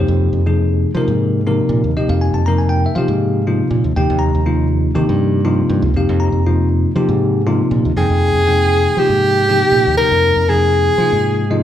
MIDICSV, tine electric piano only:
0, 0, Header, 1, 2, 480
1, 0, Start_track
1, 0, Key_signature, -4, "minor"
1, 0, Tempo, 501672
1, 1873, Time_signature, 4, 2, 24, 8
1, 11128, End_track
2, 0, Start_track
2, 0, Title_t, "Tine electric piano"
2, 0, Program_c, 0, 4
2, 0, Note_on_c, 0, 48, 65
2, 0, Note_on_c, 0, 53, 58
2, 0, Note_on_c, 0, 58, 60
2, 0, Note_on_c, 0, 63, 59
2, 0, Note_on_c, 0, 67, 73
2, 0, Note_on_c, 0, 72, 71
2, 376, Note_off_c, 0, 63, 0
2, 377, Note_off_c, 0, 53, 0
2, 377, Note_off_c, 0, 58, 0
2, 379, Note_off_c, 0, 48, 0
2, 379, Note_off_c, 0, 67, 0
2, 445, Note_on_c, 0, 48, 71
2, 445, Note_on_c, 0, 58, 64
2, 447, Note_on_c, 0, 53, 67
2, 447, Note_on_c, 0, 63, 64
2, 450, Note_on_c, 0, 68, 81
2, 646, Note_off_c, 0, 72, 0
2, 859, Note_off_c, 0, 48, 0
2, 859, Note_off_c, 0, 58, 0
2, 859, Note_off_c, 0, 63, 0
2, 860, Note_off_c, 0, 53, 0
2, 861, Note_off_c, 0, 68, 0
2, 921, Note_on_c, 0, 63, 77
2, 923, Note_on_c, 0, 48, 85
2, 926, Note_on_c, 0, 53, 73
2, 927, Note_on_c, 0, 58, 77
2, 928, Note_on_c, 0, 70, 90
2, 1336, Note_off_c, 0, 63, 0
2, 1337, Note_off_c, 0, 48, 0
2, 1339, Note_off_c, 0, 53, 0
2, 1339, Note_off_c, 0, 58, 0
2, 1340, Note_off_c, 0, 70, 0
2, 1404, Note_on_c, 0, 58, 82
2, 1404, Note_on_c, 0, 63, 82
2, 1405, Note_on_c, 0, 53, 80
2, 1407, Note_on_c, 0, 48, 89
2, 1409, Note_on_c, 0, 70, 96
2, 1818, Note_off_c, 0, 53, 0
2, 1818, Note_off_c, 0, 58, 0
2, 1818, Note_off_c, 0, 63, 0
2, 1819, Note_off_c, 0, 48, 0
2, 1820, Note_off_c, 0, 70, 0
2, 1883, Note_on_c, 0, 75, 76
2, 1884, Note_on_c, 0, 53, 59
2, 1884, Note_on_c, 0, 63, 65
2, 1886, Note_on_c, 0, 48, 69
2, 1886, Note_on_c, 0, 58, 62
2, 1886, Note_on_c, 0, 67, 76
2, 2005, Note_on_c, 0, 77, 80
2, 2006, Note_off_c, 0, 75, 0
2, 2110, Note_off_c, 0, 77, 0
2, 2118, Note_on_c, 0, 80, 86
2, 2240, Note_on_c, 0, 81, 79
2, 2244, Note_off_c, 0, 80, 0
2, 2297, Note_off_c, 0, 53, 0
2, 2297, Note_off_c, 0, 63, 0
2, 2298, Note_off_c, 0, 48, 0
2, 2298, Note_off_c, 0, 58, 0
2, 2298, Note_off_c, 0, 67, 0
2, 2347, Note_off_c, 0, 81, 0
2, 2354, Note_on_c, 0, 82, 101
2, 2370, Note_on_c, 0, 53, 65
2, 2370, Note_on_c, 0, 58, 69
2, 2371, Note_on_c, 0, 48, 75
2, 2372, Note_on_c, 0, 63, 67
2, 2373, Note_on_c, 0, 70, 84
2, 2472, Note_on_c, 0, 80, 78
2, 2481, Note_off_c, 0, 82, 0
2, 2576, Note_on_c, 0, 79, 95
2, 2583, Note_off_c, 0, 80, 0
2, 2712, Note_off_c, 0, 79, 0
2, 2736, Note_on_c, 0, 76, 83
2, 2780, Note_off_c, 0, 48, 0
2, 2780, Note_off_c, 0, 53, 0
2, 2780, Note_off_c, 0, 58, 0
2, 2781, Note_off_c, 0, 63, 0
2, 2781, Note_off_c, 0, 70, 0
2, 2825, Note_on_c, 0, 77, 90
2, 2835, Note_off_c, 0, 76, 0
2, 2848, Note_on_c, 0, 53, 67
2, 2848, Note_on_c, 0, 67, 80
2, 2851, Note_on_c, 0, 58, 68
2, 2855, Note_on_c, 0, 48, 73
2, 2856, Note_on_c, 0, 63, 68
2, 3258, Note_off_c, 0, 53, 0
2, 3259, Note_off_c, 0, 67, 0
2, 3260, Note_off_c, 0, 58, 0
2, 3262, Note_off_c, 0, 48, 0
2, 3262, Note_off_c, 0, 63, 0
2, 3321, Note_on_c, 0, 65, 81
2, 3322, Note_on_c, 0, 48, 76
2, 3322, Note_on_c, 0, 63, 67
2, 3324, Note_on_c, 0, 58, 69
2, 3325, Note_on_c, 0, 53, 70
2, 3509, Note_off_c, 0, 77, 0
2, 3734, Note_off_c, 0, 65, 0
2, 3735, Note_off_c, 0, 48, 0
2, 3735, Note_off_c, 0, 63, 0
2, 3736, Note_off_c, 0, 53, 0
2, 3736, Note_off_c, 0, 58, 0
2, 3792, Note_on_c, 0, 79, 83
2, 3798, Note_on_c, 0, 58, 63
2, 3800, Note_on_c, 0, 53, 65
2, 3801, Note_on_c, 0, 48, 70
2, 3801, Note_on_c, 0, 63, 60
2, 3802, Note_on_c, 0, 67, 78
2, 4007, Note_on_c, 0, 82, 101
2, 4024, Note_off_c, 0, 79, 0
2, 4213, Note_off_c, 0, 58, 0
2, 4214, Note_off_c, 0, 48, 0
2, 4214, Note_off_c, 0, 53, 0
2, 4214, Note_off_c, 0, 63, 0
2, 4215, Note_off_c, 0, 67, 0
2, 4267, Note_on_c, 0, 63, 73
2, 4268, Note_on_c, 0, 48, 76
2, 4269, Note_on_c, 0, 65, 82
2, 4270, Note_on_c, 0, 58, 71
2, 4272, Note_on_c, 0, 53, 69
2, 4464, Note_off_c, 0, 82, 0
2, 4687, Note_off_c, 0, 63, 0
2, 4688, Note_off_c, 0, 48, 0
2, 4688, Note_off_c, 0, 58, 0
2, 4688, Note_off_c, 0, 65, 0
2, 4689, Note_off_c, 0, 53, 0
2, 4735, Note_on_c, 0, 53, 78
2, 4737, Note_on_c, 0, 58, 80
2, 4738, Note_on_c, 0, 63, 81
2, 4739, Note_on_c, 0, 48, 92
2, 4739, Note_on_c, 0, 67, 96
2, 5160, Note_off_c, 0, 53, 0
2, 5161, Note_off_c, 0, 58, 0
2, 5162, Note_off_c, 0, 48, 0
2, 5162, Note_off_c, 0, 63, 0
2, 5163, Note_off_c, 0, 67, 0
2, 5211, Note_on_c, 0, 63, 84
2, 5214, Note_on_c, 0, 58, 90
2, 5214, Note_on_c, 0, 65, 108
2, 5215, Note_on_c, 0, 48, 91
2, 5215, Note_on_c, 0, 53, 89
2, 5638, Note_off_c, 0, 63, 0
2, 5640, Note_off_c, 0, 48, 0
2, 5640, Note_off_c, 0, 53, 0
2, 5640, Note_off_c, 0, 58, 0
2, 5640, Note_off_c, 0, 65, 0
2, 5703, Note_on_c, 0, 53, 64
2, 5705, Note_on_c, 0, 58, 65
2, 5706, Note_on_c, 0, 63, 65
2, 5708, Note_on_c, 0, 67, 77
2, 5709, Note_on_c, 0, 48, 70
2, 5713, Note_on_c, 0, 77, 66
2, 5931, Note_on_c, 0, 82, 88
2, 5943, Note_off_c, 0, 77, 0
2, 6124, Note_off_c, 0, 53, 0
2, 6125, Note_off_c, 0, 58, 0
2, 6126, Note_off_c, 0, 63, 0
2, 6126, Note_off_c, 0, 67, 0
2, 6127, Note_off_c, 0, 48, 0
2, 6186, Note_on_c, 0, 48, 76
2, 6186, Note_on_c, 0, 63, 70
2, 6186, Note_on_c, 0, 65, 89
2, 6188, Note_on_c, 0, 53, 73
2, 6188, Note_on_c, 0, 58, 70
2, 6385, Note_off_c, 0, 82, 0
2, 6606, Note_off_c, 0, 48, 0
2, 6606, Note_off_c, 0, 53, 0
2, 6606, Note_off_c, 0, 58, 0
2, 6606, Note_off_c, 0, 63, 0
2, 6606, Note_off_c, 0, 65, 0
2, 6662, Note_on_c, 0, 48, 93
2, 6662, Note_on_c, 0, 63, 85
2, 6663, Note_on_c, 0, 58, 79
2, 6664, Note_on_c, 0, 53, 83
2, 6665, Note_on_c, 0, 67, 97
2, 7083, Note_off_c, 0, 63, 0
2, 7084, Note_off_c, 0, 48, 0
2, 7084, Note_off_c, 0, 58, 0
2, 7085, Note_off_c, 0, 53, 0
2, 7085, Note_off_c, 0, 67, 0
2, 7144, Note_on_c, 0, 48, 97
2, 7145, Note_on_c, 0, 53, 85
2, 7145, Note_on_c, 0, 58, 92
2, 7145, Note_on_c, 0, 65, 108
2, 7146, Note_on_c, 0, 63, 92
2, 7565, Note_off_c, 0, 48, 0
2, 7565, Note_off_c, 0, 53, 0
2, 7565, Note_off_c, 0, 58, 0
2, 7565, Note_off_c, 0, 65, 0
2, 7566, Note_off_c, 0, 63, 0
2, 7622, Note_on_c, 0, 58, 55
2, 7625, Note_on_c, 0, 48, 59
2, 7625, Note_on_c, 0, 53, 57
2, 7627, Note_on_c, 0, 79, 71
2, 7631, Note_on_c, 0, 63, 56
2, 8044, Note_off_c, 0, 58, 0
2, 8045, Note_off_c, 0, 48, 0
2, 8046, Note_off_c, 0, 53, 0
2, 8047, Note_off_c, 0, 79, 0
2, 8048, Note_off_c, 0, 63, 0
2, 8108, Note_on_c, 0, 58, 61
2, 8110, Note_on_c, 0, 63, 61
2, 8110, Note_on_c, 0, 79, 76
2, 8113, Note_on_c, 0, 48, 70
2, 8114, Note_on_c, 0, 53, 60
2, 8528, Note_off_c, 0, 58, 0
2, 8528, Note_off_c, 0, 79, 0
2, 8529, Note_off_c, 0, 63, 0
2, 8530, Note_off_c, 0, 48, 0
2, 8531, Note_off_c, 0, 53, 0
2, 8606, Note_on_c, 0, 53, 62
2, 8606, Note_on_c, 0, 58, 59
2, 8607, Note_on_c, 0, 63, 62
2, 8612, Note_on_c, 0, 48, 64
2, 8613, Note_on_c, 0, 67, 77
2, 9017, Note_off_c, 0, 53, 0
2, 9017, Note_off_c, 0, 58, 0
2, 9017, Note_off_c, 0, 63, 0
2, 9020, Note_off_c, 0, 48, 0
2, 9021, Note_off_c, 0, 67, 0
2, 9082, Note_on_c, 0, 63, 65
2, 9082, Note_on_c, 0, 67, 82
2, 9083, Note_on_c, 0, 53, 68
2, 9085, Note_on_c, 0, 58, 62
2, 9087, Note_on_c, 0, 48, 70
2, 9496, Note_off_c, 0, 53, 0
2, 9496, Note_off_c, 0, 63, 0
2, 9496, Note_off_c, 0, 67, 0
2, 9497, Note_off_c, 0, 58, 0
2, 9498, Note_off_c, 0, 48, 0
2, 9553, Note_on_c, 0, 58, 56
2, 9555, Note_on_c, 0, 48, 63
2, 9555, Note_on_c, 0, 63, 61
2, 9557, Note_on_c, 0, 53, 58
2, 9560, Note_on_c, 0, 70, 69
2, 9972, Note_off_c, 0, 58, 0
2, 9973, Note_off_c, 0, 48, 0
2, 9973, Note_off_c, 0, 63, 0
2, 9974, Note_off_c, 0, 53, 0
2, 9976, Note_off_c, 0, 70, 0
2, 10041, Note_on_c, 0, 58, 62
2, 10041, Note_on_c, 0, 63, 62
2, 10044, Note_on_c, 0, 48, 69
2, 10045, Note_on_c, 0, 53, 63
2, 10045, Note_on_c, 0, 68, 75
2, 10457, Note_off_c, 0, 58, 0
2, 10457, Note_off_c, 0, 63, 0
2, 10458, Note_off_c, 0, 48, 0
2, 10458, Note_off_c, 0, 53, 0
2, 10459, Note_off_c, 0, 68, 0
2, 10525, Note_on_c, 0, 63, 60
2, 10526, Note_on_c, 0, 48, 69
2, 10527, Note_on_c, 0, 65, 77
2, 10528, Note_on_c, 0, 53, 61
2, 10529, Note_on_c, 0, 58, 59
2, 10939, Note_off_c, 0, 63, 0
2, 10940, Note_off_c, 0, 48, 0
2, 10941, Note_off_c, 0, 53, 0
2, 10941, Note_off_c, 0, 65, 0
2, 10942, Note_off_c, 0, 58, 0
2, 11009, Note_on_c, 0, 48, 86
2, 11009, Note_on_c, 0, 63, 76
2, 11009, Note_on_c, 0, 75, 66
2, 11011, Note_on_c, 0, 58, 78
2, 11012, Note_on_c, 0, 53, 78
2, 11012, Note_on_c, 0, 65, 93
2, 11128, Note_off_c, 0, 48, 0
2, 11128, Note_off_c, 0, 53, 0
2, 11128, Note_off_c, 0, 58, 0
2, 11128, Note_off_c, 0, 63, 0
2, 11128, Note_off_c, 0, 65, 0
2, 11128, Note_off_c, 0, 75, 0
2, 11128, End_track
0, 0, End_of_file